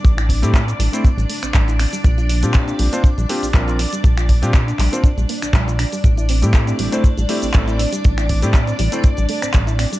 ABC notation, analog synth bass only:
X:1
M:4/4
L:1/16
Q:"Swing 16ths" 1/4=120
K:Aphr
V:1 name="Analog synth bass" clef=bass
A,,,3 A,,2 z A,,, z2 A,,, z A,,, A,,,2 z2 | B,,,3 B,,2 z B,,, z B,,, B,,, z B,,, B,,,2 z2 | B,,,3 B,,2 z B,,, z2 B,,, z B,,, B,,,2 z2 | A,,,3 A,,2 z A,,, z A,,, A,,, z A,,, A,,,2 z2 |
A,,,3 A,,2 z A,,, z2 A,,, z A,,, A,,,2 z2 |]